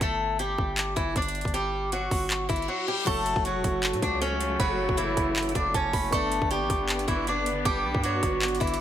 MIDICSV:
0, 0, Header, 1, 8, 480
1, 0, Start_track
1, 0, Tempo, 382166
1, 14, Time_signature, 4, 2, 24, 8
1, 11062, End_track
2, 0, Start_track
2, 0, Title_t, "Synth bell"
2, 0, Program_c, 0, 98
2, 3857, Note_on_c, 0, 85, 101
2, 5245, Note_off_c, 0, 85, 0
2, 5772, Note_on_c, 0, 83, 98
2, 7163, Note_off_c, 0, 83, 0
2, 7216, Note_on_c, 0, 81, 84
2, 7443, Note_off_c, 0, 81, 0
2, 7457, Note_on_c, 0, 83, 87
2, 7684, Note_off_c, 0, 83, 0
2, 7692, Note_on_c, 0, 85, 110
2, 9083, Note_off_c, 0, 85, 0
2, 9617, Note_on_c, 0, 86, 98
2, 11062, Note_off_c, 0, 86, 0
2, 11062, End_track
3, 0, Start_track
3, 0, Title_t, "Synth keys"
3, 0, Program_c, 1, 88
3, 0, Control_c, 1, 64, 127
3, 30, Control_c, 1, 64, 0
3, 3830, Note_on_c, 1, 54, 69
3, 3845, Note_on_c, 1, 66, 67
3, 3860, Note_on_c, 1, 69, 67
3, 3875, Note_on_c, 1, 73, 74
3, 4111, Control_c, 1, 64, 127
3, 7632, Note_off_c, 1, 54, 0
3, 7639, Note_off_c, 1, 66, 0
3, 7647, Note_off_c, 1, 69, 0
3, 7654, Note_off_c, 1, 73, 0
3, 7671, Note_on_c, 1, 59, 70
3, 7686, Note_on_c, 1, 62, 58
3, 7700, Note_on_c, 1, 71, 63
3, 7712, Control_c, 1, 64, 0
3, 7715, Note_on_c, 1, 74, 84
3, 7902, Control_c, 1, 64, 127
3, 11062, Note_off_c, 1, 59, 0
3, 11062, Note_off_c, 1, 62, 0
3, 11062, Note_off_c, 1, 71, 0
3, 11062, Note_off_c, 1, 74, 0
3, 11062, End_track
4, 0, Start_track
4, 0, Title_t, "Steel-string acoustic guitar"
4, 0, Program_c, 2, 25
4, 24, Note_on_c, 2, 69, 99
4, 34, Note_on_c, 2, 57, 79
4, 471, Note_off_c, 2, 69, 0
4, 476, Note_off_c, 2, 57, 0
4, 497, Note_on_c, 2, 67, 88
4, 507, Note_on_c, 2, 55, 63
4, 1172, Note_off_c, 2, 67, 0
4, 1178, Note_off_c, 2, 55, 0
4, 1208, Note_on_c, 2, 64, 84
4, 1218, Note_on_c, 2, 52, 61
4, 1424, Note_off_c, 2, 64, 0
4, 1429, Note_off_c, 2, 52, 0
4, 1468, Note_on_c, 2, 62, 85
4, 1477, Note_on_c, 2, 74, 62
4, 1913, Note_off_c, 2, 62, 0
4, 1918, Note_off_c, 2, 74, 0
4, 1932, Note_on_c, 2, 67, 94
4, 1941, Note_on_c, 2, 55, 79
4, 2384, Note_off_c, 2, 67, 0
4, 2389, Note_off_c, 2, 55, 0
4, 2419, Note_on_c, 2, 66, 84
4, 2428, Note_on_c, 2, 54, 68
4, 3093, Note_off_c, 2, 66, 0
4, 3099, Note_off_c, 2, 54, 0
4, 3124, Note_on_c, 2, 64, 78
4, 3134, Note_on_c, 2, 52, 57
4, 3342, Note_off_c, 2, 64, 0
4, 3347, Note_off_c, 2, 52, 0
4, 3368, Note_on_c, 2, 66, 83
4, 3378, Note_on_c, 2, 54, 70
4, 3584, Note_off_c, 2, 66, 0
4, 3589, Note_off_c, 2, 54, 0
4, 3615, Note_on_c, 2, 67, 81
4, 3625, Note_on_c, 2, 55, 60
4, 3828, Note_off_c, 2, 67, 0
4, 3833, Note_off_c, 2, 55, 0
4, 3854, Note_on_c, 2, 69, 117
4, 3865, Note_on_c, 2, 57, 86
4, 4305, Note_off_c, 2, 69, 0
4, 4311, Note_off_c, 2, 57, 0
4, 4339, Note_on_c, 2, 66, 81
4, 4350, Note_on_c, 2, 54, 68
4, 5014, Note_off_c, 2, 66, 0
4, 5019, Note_off_c, 2, 54, 0
4, 5059, Note_on_c, 2, 62, 80
4, 5069, Note_on_c, 2, 74, 61
4, 5270, Note_off_c, 2, 62, 0
4, 5275, Note_off_c, 2, 74, 0
4, 5294, Note_on_c, 2, 61, 89
4, 5303, Note_on_c, 2, 73, 63
4, 5745, Note_off_c, 2, 61, 0
4, 5750, Note_off_c, 2, 73, 0
4, 5776, Note_on_c, 2, 66, 100
4, 5786, Note_on_c, 2, 54, 82
4, 6226, Note_off_c, 2, 66, 0
4, 6231, Note_off_c, 2, 54, 0
4, 6245, Note_on_c, 2, 64, 89
4, 6256, Note_on_c, 2, 52, 64
4, 6926, Note_off_c, 2, 64, 0
4, 6932, Note_off_c, 2, 52, 0
4, 6970, Note_on_c, 2, 62, 78
4, 6981, Note_on_c, 2, 74, 67
4, 7185, Note_off_c, 2, 62, 0
4, 7191, Note_off_c, 2, 74, 0
4, 7221, Note_on_c, 2, 61, 82
4, 7231, Note_on_c, 2, 73, 63
4, 7669, Note_off_c, 2, 61, 0
4, 7674, Note_off_c, 2, 73, 0
4, 7704, Note_on_c, 2, 69, 104
4, 7714, Note_on_c, 2, 57, 84
4, 8151, Note_off_c, 2, 69, 0
4, 8156, Note_off_c, 2, 57, 0
4, 8177, Note_on_c, 2, 67, 90
4, 8187, Note_on_c, 2, 55, 63
4, 8853, Note_off_c, 2, 67, 0
4, 8858, Note_off_c, 2, 55, 0
4, 8887, Note_on_c, 2, 64, 84
4, 8898, Note_on_c, 2, 52, 61
4, 9103, Note_off_c, 2, 64, 0
4, 9109, Note_off_c, 2, 52, 0
4, 9146, Note_on_c, 2, 62, 86
4, 9156, Note_on_c, 2, 74, 64
4, 9592, Note_off_c, 2, 62, 0
4, 9597, Note_off_c, 2, 74, 0
4, 9612, Note_on_c, 2, 67, 102
4, 9622, Note_on_c, 2, 55, 79
4, 10064, Note_off_c, 2, 67, 0
4, 10070, Note_off_c, 2, 55, 0
4, 10098, Note_on_c, 2, 66, 83
4, 10109, Note_on_c, 2, 54, 70
4, 10773, Note_off_c, 2, 66, 0
4, 10779, Note_off_c, 2, 54, 0
4, 10803, Note_on_c, 2, 64, 80
4, 10813, Note_on_c, 2, 52, 59
4, 11021, Note_off_c, 2, 64, 0
4, 11026, Note_off_c, 2, 52, 0
4, 11062, End_track
5, 0, Start_track
5, 0, Title_t, "String section"
5, 0, Program_c, 3, 48
5, 3853, Note_on_c, 3, 49, 89
5, 3853, Note_on_c, 3, 54, 76
5, 3853, Note_on_c, 3, 57, 95
5, 7655, Note_off_c, 3, 49, 0
5, 7655, Note_off_c, 3, 54, 0
5, 7655, Note_off_c, 3, 57, 0
5, 7694, Note_on_c, 3, 50, 83
5, 7694, Note_on_c, 3, 59, 97
5, 11062, Note_off_c, 3, 50, 0
5, 11062, Note_off_c, 3, 59, 0
5, 11062, End_track
6, 0, Start_track
6, 0, Title_t, "808-style bass"
6, 0, Program_c, 4, 38
6, 13, Note_on_c, 4, 31, 111
6, 705, Note_off_c, 4, 31, 0
6, 734, Note_on_c, 4, 31, 104
6, 1195, Note_off_c, 4, 31, 0
6, 1213, Note_on_c, 4, 31, 98
6, 1444, Note_off_c, 4, 31, 0
6, 1454, Note_on_c, 4, 31, 106
6, 1807, Note_off_c, 4, 31, 0
6, 1823, Note_on_c, 4, 31, 100
6, 2622, Note_off_c, 4, 31, 0
6, 2655, Note_on_c, 4, 31, 106
6, 3115, Note_off_c, 4, 31, 0
6, 3134, Note_on_c, 4, 31, 104
6, 3365, Note_off_c, 4, 31, 0
6, 3855, Note_on_c, 4, 30, 114
6, 4207, Note_off_c, 4, 30, 0
6, 4220, Note_on_c, 4, 30, 110
6, 4461, Note_on_c, 4, 28, 102
6, 4480, Note_off_c, 4, 30, 0
6, 4568, Note_off_c, 4, 28, 0
6, 4575, Note_on_c, 4, 30, 108
6, 4941, Note_on_c, 4, 45, 101
6, 4960, Note_off_c, 4, 30, 0
6, 5048, Note_off_c, 4, 45, 0
6, 5054, Note_on_c, 4, 37, 104
6, 5746, Note_off_c, 4, 37, 0
6, 5773, Note_on_c, 4, 30, 113
6, 6126, Note_off_c, 4, 30, 0
6, 6140, Note_on_c, 4, 30, 102
6, 6479, Note_off_c, 4, 30, 0
6, 6494, Note_on_c, 4, 30, 104
6, 6955, Note_off_c, 4, 30, 0
6, 6974, Note_on_c, 4, 30, 101
6, 7204, Note_off_c, 4, 30, 0
6, 7214, Note_on_c, 4, 30, 110
6, 7445, Note_off_c, 4, 30, 0
6, 7453, Note_on_c, 4, 30, 109
6, 7684, Note_off_c, 4, 30, 0
6, 7693, Note_on_c, 4, 31, 113
6, 8046, Note_off_c, 4, 31, 0
6, 8060, Note_on_c, 4, 31, 110
6, 8301, Note_on_c, 4, 33, 101
6, 8320, Note_off_c, 4, 31, 0
6, 8409, Note_off_c, 4, 33, 0
6, 8414, Note_on_c, 4, 31, 106
6, 8875, Note_off_c, 4, 31, 0
6, 8893, Note_on_c, 4, 31, 108
6, 9374, Note_on_c, 4, 30, 105
6, 9392, Note_off_c, 4, 31, 0
6, 9501, Note_on_c, 4, 31, 103
6, 9520, Note_off_c, 4, 30, 0
6, 9606, Note_off_c, 4, 31, 0
6, 9613, Note_on_c, 4, 31, 111
6, 9854, Note_on_c, 4, 35, 99
6, 9872, Note_off_c, 4, 31, 0
6, 9975, Note_off_c, 4, 35, 0
6, 9980, Note_on_c, 4, 43, 101
6, 10319, Note_off_c, 4, 43, 0
6, 10334, Note_on_c, 4, 31, 107
6, 10795, Note_off_c, 4, 31, 0
6, 10814, Note_on_c, 4, 31, 105
6, 11044, Note_off_c, 4, 31, 0
6, 11062, End_track
7, 0, Start_track
7, 0, Title_t, "Reverse cymbal"
7, 0, Program_c, 5, 119
7, 2894, Note_on_c, 5, 60, 88
7, 3854, Note_off_c, 5, 60, 0
7, 11062, End_track
8, 0, Start_track
8, 0, Title_t, "Drums"
8, 13, Note_on_c, 9, 36, 118
8, 13, Note_on_c, 9, 42, 72
8, 139, Note_off_c, 9, 36, 0
8, 139, Note_off_c, 9, 42, 0
8, 493, Note_on_c, 9, 42, 83
8, 618, Note_off_c, 9, 42, 0
8, 734, Note_on_c, 9, 36, 95
8, 860, Note_off_c, 9, 36, 0
8, 974, Note_on_c, 9, 39, 116
8, 975, Note_on_c, 9, 42, 75
8, 1100, Note_off_c, 9, 39, 0
8, 1101, Note_off_c, 9, 42, 0
8, 1214, Note_on_c, 9, 36, 94
8, 1214, Note_on_c, 9, 42, 68
8, 1339, Note_off_c, 9, 36, 0
8, 1340, Note_off_c, 9, 42, 0
8, 1454, Note_on_c, 9, 36, 98
8, 1454, Note_on_c, 9, 42, 73
8, 1534, Note_off_c, 9, 42, 0
8, 1534, Note_on_c, 9, 42, 70
8, 1580, Note_off_c, 9, 36, 0
8, 1613, Note_off_c, 9, 42, 0
8, 1613, Note_on_c, 9, 42, 64
8, 1694, Note_off_c, 9, 42, 0
8, 1694, Note_on_c, 9, 42, 54
8, 1775, Note_off_c, 9, 42, 0
8, 1775, Note_on_c, 9, 42, 51
8, 1823, Note_on_c, 9, 36, 82
8, 1854, Note_off_c, 9, 42, 0
8, 1854, Note_on_c, 9, 42, 44
8, 1935, Note_off_c, 9, 42, 0
8, 1935, Note_on_c, 9, 42, 68
8, 1948, Note_off_c, 9, 36, 0
8, 2060, Note_off_c, 9, 42, 0
8, 2414, Note_on_c, 9, 42, 81
8, 2540, Note_off_c, 9, 42, 0
8, 2654, Note_on_c, 9, 36, 96
8, 2655, Note_on_c, 9, 46, 65
8, 2780, Note_off_c, 9, 36, 0
8, 2780, Note_off_c, 9, 46, 0
8, 2894, Note_on_c, 9, 39, 119
8, 2896, Note_on_c, 9, 42, 74
8, 3020, Note_off_c, 9, 39, 0
8, 3021, Note_off_c, 9, 42, 0
8, 3134, Note_on_c, 9, 36, 94
8, 3134, Note_on_c, 9, 42, 66
8, 3215, Note_off_c, 9, 42, 0
8, 3215, Note_on_c, 9, 42, 51
8, 3260, Note_off_c, 9, 36, 0
8, 3295, Note_off_c, 9, 42, 0
8, 3295, Note_on_c, 9, 42, 39
8, 3420, Note_off_c, 9, 42, 0
8, 3854, Note_on_c, 9, 36, 122
8, 3855, Note_on_c, 9, 42, 75
8, 3855, Note_on_c, 9, 49, 103
8, 3980, Note_off_c, 9, 36, 0
8, 3980, Note_off_c, 9, 49, 0
8, 3981, Note_off_c, 9, 42, 0
8, 4093, Note_on_c, 9, 42, 86
8, 4219, Note_off_c, 9, 42, 0
8, 4220, Note_on_c, 9, 36, 95
8, 4333, Note_on_c, 9, 42, 83
8, 4346, Note_off_c, 9, 36, 0
8, 4459, Note_off_c, 9, 42, 0
8, 4574, Note_on_c, 9, 36, 95
8, 4574, Note_on_c, 9, 42, 84
8, 4700, Note_off_c, 9, 36, 0
8, 4700, Note_off_c, 9, 42, 0
8, 4814, Note_on_c, 9, 39, 120
8, 4814, Note_on_c, 9, 42, 62
8, 4939, Note_off_c, 9, 42, 0
8, 4940, Note_off_c, 9, 39, 0
8, 4942, Note_on_c, 9, 42, 59
8, 5054, Note_on_c, 9, 36, 97
8, 5055, Note_off_c, 9, 42, 0
8, 5055, Note_on_c, 9, 42, 68
8, 5180, Note_off_c, 9, 36, 0
8, 5181, Note_off_c, 9, 42, 0
8, 5295, Note_on_c, 9, 42, 75
8, 5420, Note_off_c, 9, 42, 0
8, 5533, Note_on_c, 9, 42, 90
8, 5659, Note_off_c, 9, 42, 0
8, 5773, Note_on_c, 9, 36, 124
8, 5774, Note_on_c, 9, 42, 73
8, 5899, Note_off_c, 9, 36, 0
8, 5899, Note_off_c, 9, 42, 0
8, 6140, Note_on_c, 9, 36, 95
8, 6253, Note_on_c, 9, 42, 84
8, 6266, Note_off_c, 9, 36, 0
8, 6378, Note_off_c, 9, 42, 0
8, 6494, Note_on_c, 9, 36, 94
8, 6494, Note_on_c, 9, 42, 88
8, 6620, Note_off_c, 9, 36, 0
8, 6620, Note_off_c, 9, 42, 0
8, 6734, Note_on_c, 9, 39, 125
8, 6734, Note_on_c, 9, 42, 43
8, 6815, Note_off_c, 9, 42, 0
8, 6815, Note_on_c, 9, 42, 58
8, 6860, Note_off_c, 9, 39, 0
8, 6895, Note_off_c, 9, 42, 0
8, 6895, Note_on_c, 9, 42, 73
8, 6974, Note_on_c, 9, 36, 98
8, 6975, Note_off_c, 9, 42, 0
8, 6975, Note_on_c, 9, 42, 73
8, 7100, Note_off_c, 9, 36, 0
8, 7100, Note_off_c, 9, 42, 0
8, 7214, Note_on_c, 9, 36, 98
8, 7214, Note_on_c, 9, 42, 72
8, 7340, Note_off_c, 9, 36, 0
8, 7340, Note_off_c, 9, 42, 0
8, 7453, Note_on_c, 9, 36, 93
8, 7453, Note_on_c, 9, 46, 64
8, 7578, Note_off_c, 9, 46, 0
8, 7579, Note_off_c, 9, 36, 0
8, 7694, Note_on_c, 9, 36, 118
8, 7694, Note_on_c, 9, 42, 73
8, 7819, Note_off_c, 9, 36, 0
8, 7819, Note_off_c, 9, 42, 0
8, 7933, Note_on_c, 9, 42, 86
8, 8058, Note_off_c, 9, 42, 0
8, 8060, Note_on_c, 9, 36, 95
8, 8172, Note_on_c, 9, 42, 80
8, 8185, Note_off_c, 9, 36, 0
8, 8298, Note_off_c, 9, 42, 0
8, 8414, Note_on_c, 9, 36, 96
8, 8414, Note_on_c, 9, 42, 83
8, 8539, Note_off_c, 9, 36, 0
8, 8539, Note_off_c, 9, 42, 0
8, 8653, Note_on_c, 9, 39, 125
8, 8653, Note_on_c, 9, 42, 59
8, 8778, Note_off_c, 9, 39, 0
8, 8778, Note_off_c, 9, 42, 0
8, 8781, Note_on_c, 9, 42, 61
8, 8893, Note_on_c, 9, 36, 94
8, 8894, Note_off_c, 9, 42, 0
8, 8894, Note_on_c, 9, 42, 69
8, 9019, Note_off_c, 9, 36, 0
8, 9020, Note_off_c, 9, 42, 0
8, 9133, Note_on_c, 9, 42, 75
8, 9259, Note_off_c, 9, 42, 0
8, 9372, Note_on_c, 9, 42, 92
8, 9497, Note_off_c, 9, 42, 0
8, 9613, Note_on_c, 9, 36, 119
8, 9613, Note_on_c, 9, 42, 73
8, 9739, Note_off_c, 9, 36, 0
8, 9739, Note_off_c, 9, 42, 0
8, 9980, Note_on_c, 9, 36, 96
8, 10092, Note_on_c, 9, 42, 83
8, 10105, Note_off_c, 9, 36, 0
8, 10218, Note_off_c, 9, 42, 0
8, 10334, Note_on_c, 9, 36, 95
8, 10334, Note_on_c, 9, 42, 86
8, 10460, Note_off_c, 9, 36, 0
8, 10460, Note_off_c, 9, 42, 0
8, 10573, Note_on_c, 9, 39, 119
8, 10573, Note_on_c, 9, 42, 43
8, 10654, Note_off_c, 9, 42, 0
8, 10654, Note_on_c, 9, 42, 49
8, 10699, Note_off_c, 9, 39, 0
8, 10734, Note_off_c, 9, 42, 0
8, 10734, Note_on_c, 9, 42, 58
8, 10813, Note_off_c, 9, 42, 0
8, 10813, Note_on_c, 9, 42, 58
8, 10814, Note_on_c, 9, 36, 95
8, 10894, Note_off_c, 9, 42, 0
8, 10894, Note_on_c, 9, 42, 68
8, 10939, Note_off_c, 9, 36, 0
8, 10973, Note_off_c, 9, 42, 0
8, 10973, Note_on_c, 9, 42, 70
8, 11062, Note_off_c, 9, 42, 0
8, 11062, End_track
0, 0, End_of_file